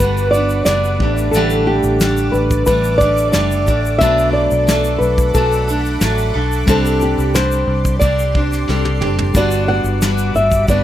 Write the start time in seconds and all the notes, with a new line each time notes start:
Already playing: G3 D4 B4 F#5 D6
0.00 G1 G3 B3 D4 F#4 B4, kick, shaker
0.17 shaker
0.31 F#4 D5, shaker
0.35 B3 D4
0.49 shaker
0.65 F#1 G3 B3 D5, snare, shaker
0.69 D4 F#4
0.84 shaker
0.99 A1 A3 D4 G4 A4 D5 D6, kick
1.03 G3 A3 D5
1.17 shaker
1.31 A1 A2 A4, shaker
1.35 D3 G3 A3 D4 G4
1.50 shaker
1.67 G4
1.83 A1, shaker
2.01 G3 A3 D4 G4, snare, shaker
2.17 shaker
2.32 A1 B4, shaker
2.51 kick, shaker
2.66 A1 G3 A3 D4 B4, kick, shaker
2.71 G4
2.84 shaker
2.98 G4 D5, kick, shaker
3.03 G3 A3 D4
3.17 shaker
3.32 F#1 G3 A3 D4 D5, snare, shaker
3.37 G4
3.51 shaker
3.66 A1 G3 A3 D4 G4, kick, shaker
3.86 shaker
3.98 B1 B2 F#3 A3 D4 F#4 E5 F#5 B5 D6, kick, shaker
4.03 A4 B4
4.18 shaker
4.33 D5
4.51 B1, shaker
4.67 F#3 A3 D4 A4, snare, shaker
4.84 shaker
4.98 B1 B4, shaker
5.18 kick, shaker
5.34 B1 F#3 A3 D4 A4, kick, shaker
5.52 shaker
5.68 A3 D4 A4, shaker
5.85 shaker
6.01 A1 F#3 A3 D4 A4, snare, shaker
6.18 shaker
6.34 B1 A3 D4 A4
6.52 shaker
6.66 C2 C3 G3 C4 D4 G4 A4 C5 D5 C6 D6, kick, shaker
6.86 shaker
7.01 G4, shaker
7.18 C2, shaker
7.34 G3 C4 D4 G4 C5, snare, shaker
7.52 shaker
7.68 C2
7.85 kick, shaker
7.99 C2 G3 C4 D4 D5, kick, shaker
8.04 G4
8.19 shaker
8.34 C4 D4 G4, kick
8.52 snare, shaker
8.68 C2 G3 C4 D4 G4 A4, snare
8.85 high tom
9.01 F#1 C4 D4 G4, mid tom
9.19 floor tom
9.34 G1 G3 B3 D4 F#4 B4 D5 F#5 B5, kick, shaker
9.51 shaker
9.68 F#5
9.84 G1, shaker
10.02 G3 B3 D4, snare, shaker
10.06 F#4
10.18 shaker
10.35 G1 E5, shaker
10.52 kick, shaker
10.68 G1 G3 B3 D4 F#4 D5, kick, shaker